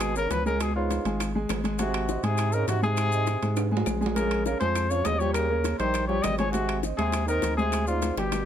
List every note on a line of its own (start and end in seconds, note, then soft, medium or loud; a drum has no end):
0.00 0.27 G#1 medium
0.00 0.16 B2 medium
0.00 0.10 G#3 medium
0.00 0.10 G#4 medium
0.00 0.17 G#4 loud
0.00 0.10 G#5 medium
0.00 high bongo medium
0.00 high timbale medium
0.00 claves medium
0.00 maracas medium
0.16 0.33 C#3 medium
0.16 0.40 B3 medium
0.16 0.33 A#4 loud
0.16 0.40 B4 medium
0.16 0.41 C#5 medium
0.16 maracas medium
0.30 0.99 C#2 medium
0.30 0.45 F3 medium
0.30 0.46 B4 loud
0.30 high bongo medium
0.30 low bongo medium
0.30 high timbale medium
0.30 maracas medium
0.46 0.62 C#3 medium
0.46 0.70 G#3 medium
0.46 0.70 G#4 medium
0.46 0.63 A#4 loud
0.46 0.70 G#5 medium
0.46 maracas soft
0.60 0.75 B2 medium
0.60 0.75 G#4 loud
0.60 high bongo medium
0.60 high timbale medium
0.60 claves medium
0.60 maracas medium
0.75 1.31 G#2 medium
0.75 1.00 B3 medium
0.75 1.31 F4 medium
0.75 1.00 B4 medium
0.75 1.00 C#5 medium
0.90 high bongo medium
0.90 high timbale medium
0.90 maracas medium
1.04 1.46 G#1 medium
1.04 1.30 G#3 medium
1.04 1.30 G#4 medium
1.04 1.30 G#5 medium
1.04 high bongo soft
1.04 high timbale medium
1.04 maracas soft
1.20 high bongo medium
1.20 high timbale medium
1.20 claves medium
1.20 maracas medium
1.35 1.59 G#3 medium
1.35 1.59 G#4 medium
1.35 1.60 G#5 medium
1.35 high bongo soft
1.49 2.18 G#1 loud
1.49 high bongo medium
1.49 low bongo medium
1.49 high timbale medium
1.49 low timbale medium
1.49 claves medium
1.49 maracas medium
1.64 1.76 G#3 medium
1.64 1.76 G#4 medium
1.64 1.77 G#5 medium
1.64 high bongo soft
1.64 high timbale medium
1.64 maracas soft
1.79 2.24 C3 medium
1.79 2.04 G#3 medium
1.79 2.26 F#4 medium
1.79 2.04 G#4 medium
1.79 2.04 G#5 medium
1.79 high bongo medium
1.79 high timbale medium
1.79 maracas medium
1.94 high timbale medium
1.94 claves medium
2.09 2.21 C4 medium
2.09 2.21 C5 medium
2.09 2.21 D#5 medium
2.09 high bongo medium
2.09 maracas medium
2.23 2.64 G#2 medium
2.23 2.57 C3 medium
2.23 2.48 G#3 medium
2.23 2.48 G#4 medium
2.23 2.55 G#4 loud
2.23 2.48 G#5 medium
2.23 high timbale medium
2.23 maracas soft
2.37 high bongo medium
2.37 high timbale medium
2.37 claves medium
2.37 maracas medium
2.52 2.69 C#3 medium
2.52 2.77 C4 medium
2.52 2.67 A#4 loud
2.52 2.78 C5 medium
2.52 2.77 D#5 medium
2.52 maracas medium
2.67 3.36 G#2 medium
2.67 2.83 C3 medium
2.67 2.82 F#4 medium
2.67 high bongo medium
2.67 low bongo medium
2.67 high timbale medium
2.67 maracas medium
2.82 3.83 C3 medium
2.82 3.07 G#3 medium
2.82 3.07 G#4 medium
2.82 3.83 G#4 loud
2.82 3.07 G#5 medium
2.82 maracas soft
2.97 high bongo medium
2.97 high timbale medium
2.97 claves medium
2.97 maracas medium
3.12 3.37 C4 medium
3.12 3.37 C5 medium
3.12 3.37 D#5 medium
3.12 maracas medium
3.27 high bongo medium
3.27 high timbale medium
3.27 maracas medium
3.42 3.84 G#2 medium
3.42 3.67 G#3 medium
3.42 3.67 G#4 medium
3.42 3.67 G#5 medium
3.42 high bongo soft
3.42 high timbale medium
3.42 maracas soft
3.56 high bongo medium
3.56 high timbale medium
3.56 claves medium
3.56 maracas medium
3.71 3.96 G#3 medium
3.71 3.96 G#4 medium
3.71 3.96 G#5 medium
3.71 high bongo soft
3.77 low timbale medium
3.86 4.55 A#1 medium
3.86 high bongo medium
3.86 low bongo medium
3.86 low timbale medium
3.86 claves medium
3.86 maracas medium
4.01 4.13 G#3 medium
4.01 4.14 G#4 medium
4.01 4.14 G#5 medium
4.01 high bongo soft
4.01 maracas soft
4.06 low timbale medium
4.15 4.44 C#3 medium
4.15 4.40 G#3 medium
4.15 4.41 G#4 medium
4.15 4.43 A#4 medium
4.15 4.41 G#5 medium
4.15 high bongo medium
4.15 high timbale medium
4.15 maracas medium
4.31 high timbale medium
4.31 claves medium
4.46 4.60 C#3 medium
4.46 4.58 C#4 medium
4.46 4.59 A#4 medium
4.46 4.58 C#5 medium
4.46 4.58 F5 medium
4.46 high bongo medium
4.46 maracas medium
4.60 5.02 F2 medium
4.60 4.90 F3 medium
4.60 4.85 G#3 medium
4.60 4.85 G#4 medium
4.60 4.91 C5 loud
4.60 4.85 G#5 medium
4.60 high timbale medium
4.60 maracas soft
4.75 high bongo medium
4.75 high timbale medium
4.75 claves medium
4.75 maracas medium
4.90 5.07 F3 medium
4.90 5.15 C#4 medium
4.90 5.06 C#5 loud
4.90 5.15 C#5 medium
4.90 5.15 F5 medium
4.90 maracas medium
5.05 5.74 D#2 medium
5.05 5.21 G#3 medium
5.05 5.21 D#5 loud
5.05 high bongo medium
5.05 low bongo medium
5.05 high timbale medium
5.05 low timbale medium
5.05 maracas medium
5.19 5.34 F3 medium
5.19 5.45 G3 medium
5.19 5.45 G4 medium
5.19 5.33 C#5 loud
5.19 5.45 G5 medium
5.19 maracas soft
5.34 5.76 C#3 medium
5.34 5.76 A#4 loud
5.34 high bongo medium
5.34 high timbale medium
5.34 claves medium
5.34 maracas medium
5.50 5.74 A#3 medium
5.50 5.74 A#4 medium
5.50 5.74 C#5 medium
5.64 high bongo medium
5.64 high timbale medium
5.64 maracas medium
5.78 6.21 A#1 medium
5.78 6.07 D#3 medium
5.78 6.04 G3 medium
5.78 6.04 G4 medium
5.78 6.07 C5 loud
5.78 6.04 G5 medium
5.78 high bongo soft
5.78 high timbale medium
5.78 maracas soft
5.94 high bongo medium
5.94 high timbale medium
5.94 claves medium
5.94 maracas medium
6.07 6.24 F3 medium
6.07 6.33 G3 medium
6.07 6.34 G4 medium
6.07 6.24 C#5 loud
6.07 6.34 G5 medium
6.07 high bongo soft
6.23 6.93 G#1 loud
6.23 6.37 G3 medium
6.23 6.37 D#5 loud
6.23 high bongo medium
6.23 low bongo medium
6.23 high timbale medium
6.23 low timbale medium
6.23 claves medium
6.23 maracas medium
6.37 6.50 F3 medium
6.37 6.51 G#3 medium
6.37 6.52 G#4 medium
6.37 6.52 C#5 loud
6.37 6.52 G#5 medium
6.37 high bongo soft
6.37 high timbale medium
6.37 maracas soft
6.51 6.80 C3 medium
6.51 6.78 G#3 medium
6.51 6.81 F#4 medium
6.51 6.79 G#4 medium
6.51 6.79 G#5 medium
6.51 high bongo medium
6.51 high timbale medium
6.51 maracas medium
6.69 high timbale medium
6.69 claves medium
6.83 6.96 C4 medium
6.83 6.96 C5 medium
6.83 6.96 D#5 medium
6.83 high bongo medium
6.83 maracas medium
6.97 7.40 D#2 loud
6.97 7.25 C3 medium
6.97 7.23 G#3 medium
6.97 7.25 G#4 medium
6.97 7.23 G#4 medium
6.97 7.23 G#5 medium
6.97 high timbale medium
6.97 maracas soft
7.12 high bongo medium
7.12 high timbale medium
7.12 claves medium
7.12 maracas medium
7.26 7.55 D#3 medium
7.26 7.52 C4 medium
7.26 7.56 A#4 loud
7.26 7.53 C5 medium
7.26 7.53 D#5 medium
7.26 maracas medium
7.42 8.12 D2 medium
7.42 high bongo medium
7.42 low bongo medium
7.42 high timbale medium
7.42 maracas medium
7.57 7.85 C3 medium
7.57 7.82 G#3 medium
7.57 7.85 G#4 loud
7.57 7.83 G#4 medium
7.57 7.82 G#5 medium
7.57 maracas soft
7.72 high bongo medium
7.72 high timbale medium
7.72 claves medium
7.72 maracas medium
7.87 8.16 G#2 medium
7.87 8.12 C4 medium
7.87 8.15 F4 medium
7.87 8.12 C5 medium
7.87 8.12 D5 medium
7.87 maracas medium
8.02 high bongo medium
8.02 high timbale medium
8.02 maracas medium
8.16 8.45 G1 medium
8.16 8.45 B2 medium
8.16 8.42 G3 medium
8.16 8.45 G4 medium
8.16 8.42 G4 medium
8.16 8.42 G5 medium
8.16 high bongo medium
8.16 high timbale medium
8.16 maracas soft
8.32 high bongo medium
8.32 high timbale medium
8.32 claves medium
8.32 maracas medium